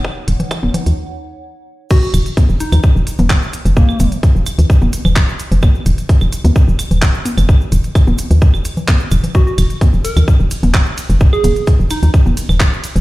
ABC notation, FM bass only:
X:1
M:4/4
L:1/16
Q:1/4=129
K:Ebm
V:1 name="FM bass" clef=bass
z2 E,,, z2 E,,, z E,, z8 | z2 E,,, z2 E,,, z E,, z E,,, z E,,, z3 F,,, | z2 E,,, z2 E,,, z E,, z E,,, z E,,, z3 F,,, | z2 E,,, z2 E,,, z E,, z E,,, z E,,, z3 F,,, |
z2 E,,, z2 E,,, z E,,2 E,,, z4 E,,, z | z2 E,,, z2 E,,, z E,, z E,,, z E,,, z3 F,,, | z2 E,,, z2 E,,, z E,, z E,,, z E,,, z3 F,,, |]